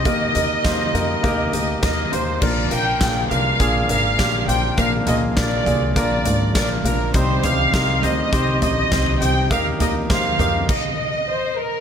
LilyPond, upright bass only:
\new Staff \with { instrumentName = "Upright bass" } { \clef bass \time 4/4 \key bes \mixolydian \tempo 4 = 102 ees,8 ees,8 ees,8 f,8 ees,8 d,8 ees,8 ees,8 | bes,,8 bes,,8 bes,,8 c,8 bes,,8 aes,,8 bes,,8 bes,,8 | bes,,8 bes,,8 bes,,8 c,8 bes,,8 aes,,8 bes,,8 bes,,8 | c,8 c,8 c,8 d,8 c,8 bes,,8 c,8 c,8 |
ees,8 ees,8 ees,8 f,8 r2 | }